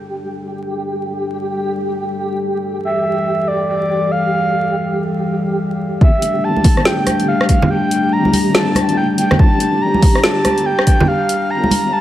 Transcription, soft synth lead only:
2.85 3.49 E5 loud
3.48 3.68 D5 medium
3.69 4.13 D5 loud
4.11 4.96 F5 loud
6.02 6.46 E5 loud
6.44 6.87 A5 loud
6.86 7.28 G5 loud
7.28 7.48 F5 loud
7.49 7.69 F5 medium
7.70 8.14 G5 loud
8.12 8.56 A#5 loud
8.55 8.97 A5 loud
8.97 9.07 G5 loud
9.18 9.41 G5 loud
9.39 9.83 A5 loud
9.82 10.23 A#5 loud
10.23 10.67 A5 loud
10.66 10.86 G5 loud
10.87 11.09 G5 loud
11.08 11.52 F5 loud
11.50 11.94 A#5 loud
11.92 12.01 A5 loud

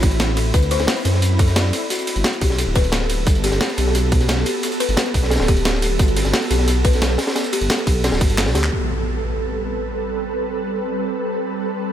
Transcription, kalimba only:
0.37 0.52 A4 medium
0.54 0.69 B4 medium
0.71 0.86 C5 loud
1.39 1.55 A4 loud
1.56 1.72 D5 medium
1.73 1.90 A4 medium
1.90 2.00 F#4 medium
2.41 2.57 G4 medium
2.59 2.74 A4 medium
2.76 2.91 B4 loud
3.44 3.59 G4 loud
3.61 3.70 A4 medium
3.78 3.94 G4 medium
3.95 4.04 F#4 medium
4.46 4.61 G4 medium
4.63 4.78 A4 medium
4.80 4.96 B4 loud
5.48 5.64 G4 loud
5.65 5.75 A4 medium
5.82 5.99 G4 medium
6.00 6.09 F#4 medium
6.51 6.66 G4 medium
6.68 6.83 A4 medium
6.85 7.00 B4 loud
7.53 7.68 G4 loud
7.70 7.79 A4 medium
7.87 8.03 G4 medium
8.04 8.13 F#4 medium
8.55 8.70 G4 medium

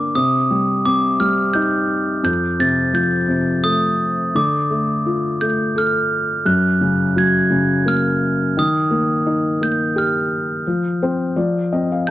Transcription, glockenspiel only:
0.15 0.87 D#6 medium
0.85 1.17 D6 medium
1.20 1.52 F6 medium
1.54 2.23 G6 medium
2.25 2.60 G6 medium
2.60 2.96 A6 medium
2.95 3.67 G6 medium
3.64 4.37 D#6 medium
4.36 5.44 D6 medium
5.41 5.77 G6 medium
5.78 6.50 F6 medium
6.46 7.19 F#6 medium
7.18 7.90 G#6 medium
7.88 8.59 F6 medium
8.59 9.65 D#6 medium
9.63 9.98 G6 medium
9.98 12.04 F6 medium
12.07 12.11 G6 medium

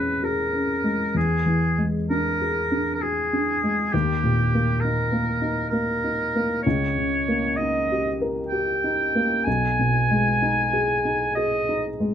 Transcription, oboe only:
0.00 0.26 B4 soft
0.24 1.16 A#4 soft
1.17 1.82 G#4 soft
2.10 2.91 A#4 soft
2.94 3.03 A#4 soft
3.01 3.93 G#4 soft
3.92 4.82 G4 soft
4.80 5.69 A#4 soft
5.69 6.62 A#4 soft
6.63 7.57 C#5 medium
7.56 8.23 D#5 medium
8.48 9.45 G5 medium
9.44 11.34 G#5 medium
11.35 11.83 D#5 soft

